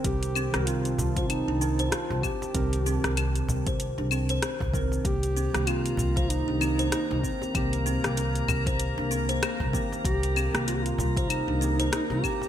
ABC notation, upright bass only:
X:1
M:4/4
L:1/16
Q:"Swing 16ths" 1/4=96
K:Eblyd
V:1 name="Upright bass" clef=bass
C,,3 C,,3 C,,3 C,,3 z C,, z2 | C,,3 C,,3 C,,3 C,,3 z C,,3 | C,,3 C,,3 C,,3 C,,3 z C,, z2 | C,,3 C,,3 C,,3 C,,3 z C,, z2 |
C,,3 C,,3 C,,3 C,,3 z C,, z2 |]